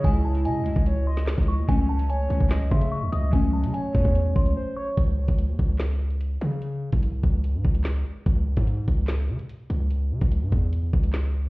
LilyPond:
<<
  \new Staff \with { instrumentName = "Synth bell" } { \time 4/4 \key cis \minor \tempo 4 = 146 gis''8 a''8 gis''4. bis''4 cis'''8 | gis''8 a''8 gis''4. bis''8 cis'''8 dis'''8 | gis''8 a''8 gis''4. bis''4 cis'''8 | r1 |
r1 | r1 | r1 | }
  \new Staff \with { instrumentName = "Soft synth lead" } { \time 4/4 \key cis \minor r4 dis''4 cis''8 dis''8 r4 | r4 cis''4 dis''8 e''4 dis''8 | r4 cis''2 bis'8 cis''8 | r1 |
r1 | r1 | r1 | }
  \new Staff \with { instrumentName = "Synth keys" } { \time 4/4 \key cis \minor <cis gis e'>8 r16 <cis gis e'>8 r16 <cis gis e'>16 <cis gis e'>4. r8. | <fis a cis'>8 r16 <fis a cis'>8 r16 <fis a cis'>16 <fis a cis'>4. r8. | <fis a cis'>8 r16 <fis a cis'>8 r16 <fis a cis'>16 <fis a cis'>4. r8. | r1 |
r1 | r1 | r1 | }
  \new Staff \with { instrumentName = "808-style bass" } { \clef bass \time 4/4 \key cis \minor cis,4 cis16. cis,16. cis,4. cis,8 dis,16 | cis,4. cis,16 cis,8. cis8. dis,16 cis,8 | cis,8. cis16 r8 e,16 e,8. cis,8 r4 | cis,8. cis,8 dis,16 cis,2 cis8~ |
cis8. bis,,8. cis,8. gis,16 cis,4 r8 | cis,8. gis,8. cis,4 cis16 r8. cis,8~ | cis,8 cis16 cis,8 gis,16 e,4 cis,4. | }
  \new DrumStaff \with { instrumentName = "Drums" } \drummode { \time 4/4 <hh bd>8. hh16 hh8 hh16 bd16 hh8. <hh sn>16 <hc hh sn>32 hh32 <hh bd>32 hh8 r32 | <hh bd>8. hh16 hh8 hh16 bd16 <hc hh sn>8 bd16 hh16 r8 hh8 | <hh bd>8. hh16 hh8 <hh bd>16 bd16 hh8 bd16 hh16 r4 | <hh bd>8. <hh bd>16 hh8 <hh bd>8 <hc hh sn>8. hh16 hh8 hh8 |
hh8. <hh bd>16 hh8 <hh bd>8 hh8 bd16 hh16 <hc hh sn>4 | <hh bd>8. <hh bd>16 hh8 <hh bd>8 <hc hh sn>8. hh16 hh8 hh8 | hh8. <hh bd>16 hh8 <hh bd>8 hh8 bd16 hh16 <hc hh sn>4 | }
>>